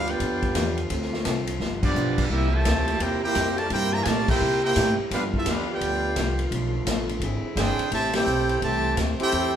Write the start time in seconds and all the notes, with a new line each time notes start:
Already playing: D2 D3 G3 B3 F4
0.07 B3 D4 F4 G4 B4 D5 G5, ride
0.20 F2 G2 F3 B3 D4, ride
0.42 kick, ride
0.55 E2 G2 F3 B3 D4, snare, hi-hat pedal, ride
0.77 ride
0.90 D2 D3 A3 C4 F4 A4, ride
1.02 snare
1.13 snare
1.25 C2 D3 C4 F4 A4, snare, hi-hat pedal, ride
1.47 ride
1.60 G1 G2 D3 F3 G3 B3 D4, snare
1.82 F3 B3 D4 F4 G4 D5, kick, crash
1.95 B1 G2 F3 B3 D4, hi-hat pedal
2.18 kick, crash
2.29 C2 A#2 C3 G3 A#3 C4 E4 G4 A#4 E5
2.33 E4
2.51 A#2 E3 A3 G4 C5 E5 A5
2.65 D2 C3 G3 A#3 E4, snare, hi-hat pedal, ride
2.88 ride
2.99 E2 C3 G3 A#3 E4 G4 A#4 C5 G5, ride
3.04 E4
3.23 A#3 E4 G4 A#4 C5 G5
3.35 F2 C3 G3 A#3 E4, snare, hi-hat pedal, ride
3.58 A3 F4 A#4 D5 A5, ride
3.70 G2 C3 G3 A#3 E4 G4 A#4 C5 G5, ride
3.93 E3 G3 A#3 G4 C5 E5 A#5
4.02 A#2 C3 F4 A#4 D5 G#5 A5, snare, hi-hat pedal, ride
4.06 G3 A3 A#3 E4
4.28 A#3 E4 G4 A#4 C5 G5, kick, crash
4.40 C3 G3 A#3 E4
4.63 A#3 E4 G4 A#4 C5 G5
4.76 A2 C3 G3 A#3 E4, snare, hi-hat pedal, ride
4.99 muted upright bass stroke
5.10 G2 D3 F3 B3 D4 F4 G4 B4 F5, snare, ride
5.34 C4 E4 F4 A4 E5, kick
5.45 E2 G2 F3 B3 D4 F4, snare, hi-hat pedal, ride
5.50 D4 G4 B4 F5
5.69 B3 D4 F4 G4 B4 D5 G5
5.81 D2 G2 F3 B3 D4, ride
6.16 C2 G2 F3 B3 D4, snare, hi-hat pedal, ride
6.39 ride
6.51 B1 B2 F3 A3 B3, ride
6.56 D4
6.85 A1 B2 F3 A3 D4, snare, hi-hat pedal, ride
7.09 ride
7.20 G#1 E3 G#3 C4 D4 E4, ride
7.24 G#4
7.42 muted upright bass stroke
7.55 G1 E3 C4 D4 G#4 C5 G5, snare, hi-hat pedal, ride
7.78 muted upright bass stroke, ride
7.91 A1 A2 C3 E3 G3 A3 C4 E4 G4 C5 E5 A5, ride
8.13 C4 E4 G4 A4 C5 G5, snare, ride
8.26 B1 A2 G3 C4 E4, hi-hat pedal
8.49 ride
8.61 C2 A2 C3 E3 G3 A3 C4 E4 G4 C5 E5 A5, ride
8.96 D2 A2 G3 C4 E4, snare, hi-hat pedal, ride
9.20 C4 E4 G4 A4 C5 G5, ride
9.31 E2 A2 G3 C4 E4, ride